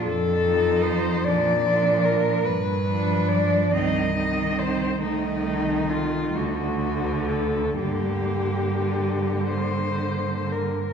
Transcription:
0.05 1.10 F2 medium
0.05 0.85 A4 medium
0.46 1.22 F3 soft
0.46 1.22 D#4 soft
0.84 1.25 C5 medium
1.24 2.31 A#2 medium
1.24 1.63 F3 soft
1.24 1.63 D4 soft
1.24 2.06 D5 medium
1.65 2.44 F3 soft
1.65 2.44 D4 soft
2.05 2.46 A#4 medium
2.45 3.56 G2 medium
2.45 3.30 B4 medium
2.87 3.70 F3 soft
2.87 3.70 D4 soft
3.28 3.74 D5 medium
3.72 4.87 C2 soft
3.72 4.15 D#3 soft
3.72 4.15 C4 soft
3.72 4.60 D#5 medium
4.16 5.00 D#3 soft
4.16 5.01 C4 soft
4.59 5.01 C5 medium
5.02 6.31 C2 soft
5.02 6.38 D#3 medium
5.02 6.32 A3 soft
5.02 5.91 D#4 medium
5.89 6.37 F4 medium
6.35 7.77 D2 soft
6.35 7.81 D3 soft
6.35 7.78 A3 soft
6.35 7.30 F#4 medium
7.29 7.78 A4 medium
7.79 10.73 G2 soft
7.79 10.74 D3 soft
7.79 10.73 A#3 soft
7.79 9.45 G4 medium
9.47 10.53 C5 medium
10.52 10.93 A#4 soft

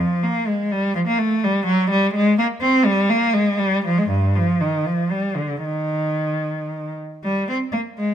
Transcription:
0.00 0.22 F3 medium
0.23 0.47 A#3 medium
0.47 0.71 G#3 medium
0.71 0.95 G3 medium
0.95 1.00 F3 medium
1.07 1.19 A#3 medium
1.18 1.42 A3 medium
1.44 1.67 G3 medium
1.67 1.90 F#3 medium
1.91 2.14 G3 medium
2.14 2.38 G#3 medium
2.38 2.46 A#3 medium
2.61 2.85 C4 medium
2.85 3.10 G3 medium
3.09 3.34 A#3 medium
3.33 3.58 G#3 medium
3.59 3.84 G3 medium
3.85 3.98 F3 medium
3.98 4.11 G#3 medium
4.10 4.35 G2 medium
4.35 4.61 F3 medium
4.61 4.86 D#3 medium
4.86 5.11 F3 medium
5.11 5.36 G3 medium
5.36 5.63 D3 medium
5.63 6.94 D#3 medium
7.23 7.46 G3 medium
7.49 7.57 C4 medium
7.72 7.80 A#3 medium
7.98 8.14 G#3 medium

